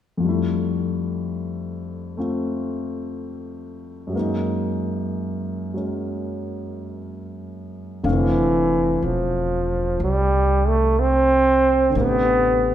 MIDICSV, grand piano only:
0, 0, Header, 1, 2, 480
1, 0, Start_track
1, 0, Tempo, 977199
1, 108, Time_signature, 4, 2, 24, 8
1, 6261, End_track
2, 0, Start_track
2, 0, Title_t, "Grand piano"
2, 0, Program_c, 0, 0
2, 86, Note_on_c, 0, 41, 37
2, 99, Note_on_c, 0, 53, 34
2, 114, Note_on_c, 0, 55, 30
2, 127, Note_on_c, 0, 57, 33
2, 141, Note_on_c, 0, 64, 42
2, 197, Control_c, 0, 64, 127
2, 1059, Note_off_c, 0, 57, 0
2, 1067, Note_on_c, 0, 57, 35
2, 1074, Note_on_c, 0, 60, 31
2, 1080, Note_on_c, 0, 65, 36
2, 2000, Note_on_c, 0, 42, 39
2, 2013, Note_on_c, 0, 54, 35
2, 2024, Note_off_c, 0, 41, 0
2, 2024, Note_on_c, 0, 56, 33
2, 2030, Note_off_c, 0, 57, 0
2, 2031, Note_off_c, 0, 53, 0
2, 2034, Note_off_c, 0, 60, 0
2, 2037, Note_off_c, 0, 65, 0
2, 2038, Note_off_c, 0, 55, 0
2, 2040, Note_on_c, 0, 58, 35
2, 2041, Control_c, 0, 64, 0
2, 2052, Note_off_c, 0, 64, 0
2, 2054, Note_on_c, 0, 63, 42
2, 2122, Control_c, 0, 64, 127
2, 2812, Note_off_c, 0, 54, 0
2, 2820, Note_off_c, 0, 56, 0
2, 2820, Note_on_c, 0, 54, 32
2, 2828, Note_on_c, 0, 56, 26
2, 2834, Note_on_c, 0, 61, 31
2, 3936, Note_off_c, 0, 42, 0
2, 3946, Note_on_c, 0, 50, 41
2, 3947, Note_off_c, 0, 54, 0
2, 3948, Note_on_c, 0, 57, 36
2, 3949, Note_on_c, 0, 60, 38
2, 3951, Note_off_c, 0, 56, 0
2, 3954, Note_on_c, 0, 77, 47
2, 3955, Note_off_c, 0, 58, 0
2, 3955, Note_off_c, 0, 61, 0
2, 3960, Control_c, 0, 64, 0
2, 3963, Note_off_c, 0, 63, 0
2, 4049, Control_c, 0, 64, 127
2, 5838, Note_off_c, 0, 50, 0
2, 5845, Note_on_c, 0, 50, 39
2, 5855, Note_off_c, 0, 57, 0
2, 5863, Note_on_c, 0, 57, 38
2, 5867, Note_off_c, 0, 60, 0
2, 5870, Note_off_c, 0, 77, 0
2, 5875, Control_c, 0, 64, 0
2, 5881, Note_on_c, 0, 48, 40
2, 5900, Note_on_c, 0, 67, 47
2, 5974, Control_c, 0, 64, 127
2, 6261, Note_off_c, 0, 48, 0
2, 6261, Note_off_c, 0, 50, 0
2, 6261, Note_off_c, 0, 57, 0
2, 6261, Note_off_c, 0, 67, 0
2, 6261, End_track
0, 0, End_of_file